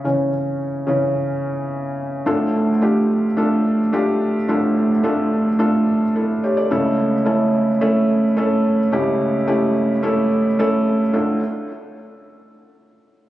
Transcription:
<<
  \new Staff \with { instrumentName = "Felt piano" } { \time 4/4 \key d \minor \tempo 4 = 108 << { r1 | r1 | r2. <e' a'>8 <g' cis''>16 <a' d''>16~ | <a' d''>16 r2. r8. |
r1 | r1 | } \\ { r1 | <a d' f' a'>4 <a d' f' g'>4 <a d' f' a'>4 <a d' f' g'>4 | <a d' f' a'>4 <a d' f' a'>4 <a d' f' a'>4 r4 | <a cis' e' a'>4 <a cis' e' a'>4 <a cis' e' a'>4 <a cis' e' a'>4 |
<a cis' e' g'>4 <a cis' e' g'>4 <a cis' e' a'>4 <a cis' e' a'>4 | <a d' f' a'>8 r2. r8 | } >> }
  \new Staff \with { instrumentName = "Felt piano" } { \clef bass \time 4/4 \key d \minor <cis e cis'>4. <cis e cis'>2~ <cis e cis'>8 | <d, a,>1 | <d, a,>1 | <cis, cis>1 |
<cis, cis>1 | d,8 r2. r8 | }
>>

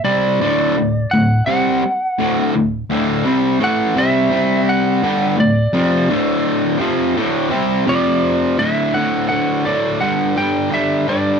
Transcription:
<<
  \new Staff \with { instrumentName = "Lead electric guitar" } { \time 4/4 \key d \mixolydian \tempo 4 = 84 d''4. fis''8 fis''4. r8 | r4 fis''8 e''4 fis''4 d''8~ | d''4. r4. d''4 | e''8 fis''8 fis''8 d''8 fis''8 g''8 e''8 d''8 | }
  \new Staff \with { instrumentName = "Distorted electric guitar" } { \clef bass \time 4/4 \key d \mixolydian <c g c'>8 <d, a, d>8 <d, a,>8 <d, a,>8 <c g c'>8 r8 <d, a, d>8 <d, a,>8 | <d, a, d>8 <c g c'>8 <a, e a>8 <c g c'>8 <c g c'>4 <g, d g>8 <d, a,>8 | <f, c f>8 <d, a, d>4 <f, c f>8 <d, a, d>8 <c g c'>8 <f, c f>4 | <d, a, d>8 <d, a, d>8 <d, a, d>8 <d, a, d>8 <g, d g>8 <g, d g>8 <g, d g>8 <g, d g>8 | }
>>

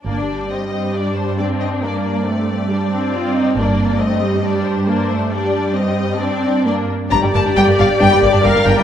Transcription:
<<
  \new Staff \with { instrumentName = "Violin section" } { \time 4/4 \key g \minor \tempo 4 = 136 d''4 ees''4 d''8 c''8 d''8 ees''8 | d''8 d''2.~ d''8 | d''4 ees''4 d''8 c''4. | d''4 ees''4 d''4 d''8 r8 |
bes''8 a''8 g''8 f''8 g''8 d''8 f''8 g''8 | }
  \new Staff \with { instrumentName = "Violin section" } { \time 4/4 \key g \minor << { d'4 c'8 c'8 d'4 d'4~ | d'4 c'4 d'4 f'8 ees'8 | d'4 c'4 d'4 d'4 | d'4 c'4 d'4 d'8 r8 |
d''1 | } \\ { r1 | r1 | r1 | r1 |
d'16 g16 bes16 d'16 g16 bes16 d'16 r16 d'16 g16 bes16 d'16 g16 bes16 d'16 g16 | } >> }
  \new Staff \with { instrumentName = "Viola section" } { \time 4/4 \key g \minor bes8 g2~ g8 c'4 | bes4 a4 g8 c'4. | bes4 a8 g4. bes8 a8 | g2 c'4 bes8 r8 |
g'2. bes'4 | }
  \new Staff \with { instrumentName = "Cello section" } { \clef bass \time 4/4 \key g \minor g,1~ | g,1 | g,1~ | g,2.~ g,8 r8 |
g,16 g,16 g,16 g,16 g,16 g,16 g,16 r16 g,16 g,16 g,16 g,16 g,16 g,16 g,16 g,16 | }
  \new Staff \with { instrumentName = "Double bass section" } { \clef bass \time 4/4 \key g \minor g,,4 r2. | r1 | g,,4 r2. | r1 |
g,,16 r16 g,,16 r16 g,,16 r16 g,,16 r16 g,,16 r16 g,,16 r16 g,,16 r16 g,,16 r16 | }
>>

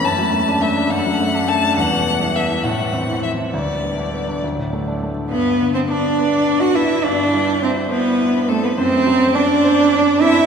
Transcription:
<<
  \new Staff \with { instrumentName = "Violin" } { \time 6/8 \key g \major \tempo 4. = 69 a''4 e''8 fis''4 a''8 | fis''4 e''8 fis''4 e''8 | d''4. r4. | b'8. c''16 d''4~ d''16 fis''16 e''8 |
d''4 c''8 b'4 a'16 b'16 | c''4 d''4. e''8 | }
  \new Staff \with { instrumentName = "Cello" } { \time 6/8 \key g \major a2. | g4. e4. | g4. fis4 r8 | b8. c'16 d'4~ d'16 fis'16 e'8 |
d'4 c'8 b4 a16 b16 | c'4 d'4. e'8 | }
  \new Staff \with { instrumentName = "Grand piano" } { \time 6/8 \key g \major fis,16 fis16 a16 d'16 a16 d'16 fis,16 fis16 a16 d'16 a16 d'16 | e,16 b,16 b16 e'16 b16 e'16 a,16 e16 c'16 e'16 c'16 e'16 | d,16 d16 b16 d'16 b16 d'16 d,16 a,16 a16 d'16 a16 d'16 | g,8 d8 d'8 b'8 d'8 b8 |
g,8 g8 e'8 c''8 e'8 c'8 | fis,8 fis8 d'8 c''8 d'8 c'8 | }
>>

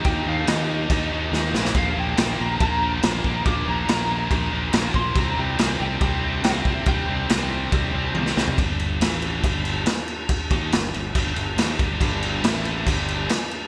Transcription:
<<
  \new Staff \with { instrumentName = "Lead electric guitar" } { \time 4/4 \key g \minor \tempo 4 = 140 g''8 f''8 ees''2~ ees''8 r8 | f''8 g''8 g''8 bes''8 bes''2 | d'''8 bes''8 bes''2~ bes''8 c'''8 | bes''8 g''4 g''4. e''4 |
g''2. r4 | r1 | r1 | r1 | }
  \new Staff \with { instrumentName = "Distorted electric guitar" } { \clef bass \time 4/4 \key g \minor <ees bes ees'>8 <ees bes ees'>8 <ees bes ees'>8 <ees bes ees'>8 <ees bes ees'>8 <ees bes ees'>8 <ees bes ees'>8 <bes, f bes>8 | <bes, f bes>8 <bes, f bes>8 <bes, f bes>8 <bes, f bes>8 <bes, f bes>8 <bes, f bes>8 <bes, f bes>8 <bes, f bes>8 | <bes, f bes>8 <bes, f bes>8 <bes, f bes>8 <bes, f bes>8 <bes, f bes>8 <bes, f bes>8 <bes, f bes>8 <bes, f bes>8 | <c g c'>8 <c g c'>8 <c g c'>8 <c g c'>8 <c g c'>8 <c g c'>8 <c g c'>8 <c g c'>8 |
<c g c'>8 <c g c'>8 <c g c'>8 <c g c'>8 <c g c'>8 <c g c'>8 <c g c'>8 <c g c'>8 | r1 | r1 | <g, d g>4 <a, e a>4 <g, d g>4 r4 | }
  \new Staff \with { instrumentName = "Distorted electric guitar" } { \clef bass \time 4/4 \key g \minor <ees bes ees'>8 <ees bes ees'>8 <ees bes ees'>8 <ees bes ees'>8 <ees bes ees'>8 <ees bes ees'>8 <ees bes ees'>8 <bes, f bes>8 | <bes, f bes>8 <bes, f bes>8 <bes, f bes>8 <bes, f bes>8 <bes, f bes>8 <bes, f bes>8 <bes, f bes>8 <bes, f bes>8 | <bes, f bes>8 <bes, f bes>8 <bes, f bes>8 <bes, f bes>8 <bes, f bes>8 <bes, f bes>8 <bes, f bes>8 <bes, f bes>8 | <c g c'>8 <c g c'>8 <c g c'>8 <c g c'>8 <c g c'>8 <c g c'>8 <c g c'>8 <c g c'>8 |
<c g c'>8 <c g c'>8 <c g c'>8 <c g c'>8 <c g c'>8 <c g c'>8 <c g c'>8 <c g c'>8 | <g, d g>4 <a, e a>4 <g, d g>4 r4 | r8 <ees bes ees'>8 <g, d>8 <g, d>8 <g, d g>8 <g, d>8 <ees bes ees'>8 <g, d g>8 | <g, d g>4 <a, e a>4 <g, d g>4 r4 | }
  \new Staff \with { instrumentName = "Fingered electric bass" } { \clef bass \time 4/4 \key g \minor ees,8 ees,8 ees,4 ees,8 ees,8 ees,8 bes,,8 | bes,,8 bes,,8 bes,,8 bes,,8 bes,,4 bes,,8 bes,,8 | bes,,8 bes,,8 bes,,4 bes,,8 bes,,8 bes,,8 bes,,8 | c,8 c,8 c,8 c,8 c,4 c,8 c,8 |
c,8 c,8 c,4 c,8 c,8 c,8 c,8 | g,,4 a,,4 g,,4 r4 | r8 ees,8 g,,8 g,,8 g,,8 g,,8 ees,8 g,,8 | g,,4 a,,4 g,,4 r4 | }
  \new DrumStaff \with { instrumentName = "Drums" } \drummode { \time 4/4 <cymc bd>4 <cymc sn>4 <cymc bd>4 sn8 sn16 sn16 | <cymc bd>4 <cymc sn>4 <cymc bd>4 <cymc sn>8 bd8 | <cymc bd>4 <cymc sn>4 <cymc bd>4 <cymc sn>8 bd8 | <cymc bd>4 <cymc sn>4 <cymc bd>4 <cymc sn>8 bd8 |
<cymc bd>4 <cymc sn>4 <cymc bd>4 tommh16 sn16 sn16 tomfh16 | <cymc bd>8 cymc8 <cymc sn>8 cymc8 <cymc bd>8 cymc8 <cymc sn>8 cymc8 | <cymc bd>8 <cymc bd>8 <cymc sn>8 cymc8 <cymc bd>8 cymc8 <cymc sn>8 <cymc bd>8 | <cymc bd>8 cymc8 <cymc sn>8 cymc8 <cymc bd>8 cymc8 <cymc sn>8 cymc8 | }
>>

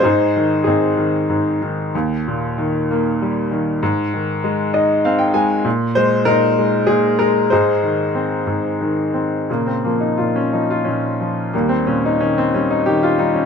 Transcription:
<<
  \new Staff \with { instrumentName = "Upright piano" } { \time 3/4 \key aes \major \tempo 4 = 95 << { c''4 aes'4 r4 | r2. | r4. ees''8 f''16 g''16 aes''8 | r8 c''8 bes'4 aes'8 bes'8 |
c''4 r2 | bes16 c'16 bes16 ees'16 f'16 des'16 ees'16 f'16 des'4 | bes16 c'16 des'16 ees'16 des'16 c'16 des'16 ees'16 g'16 f'16 ees'16 des'16 | } \\ { <ees' aes'>4 <c' ees'>4. r8 | r2. | r2. | r4 ees'4. r8 |
<ees' aes'>4. r4. | des4. r4. | g4. r4. | } >> }
  \new Staff \with { instrumentName = "Upright piano" } { \clef bass \time 3/4 \key aes \major aes,8 ees8 aes,8 ees8 aes,8 ees8 | ees,8 bes,8 ees8 bes8 g8 ees8 | aes,8 ees8 aes8 ees'8 c'8 aes8 | bes,8 aes8 bes,8 aes8 bes,8 aes8 |
aes,8 ees8 c'8 aes,8 ees8 c'8 | bes,8 f8 bes,8 f8 bes,8 f8 | ees,8 bes,8 ees8 g8 ees8 g8 | }
>>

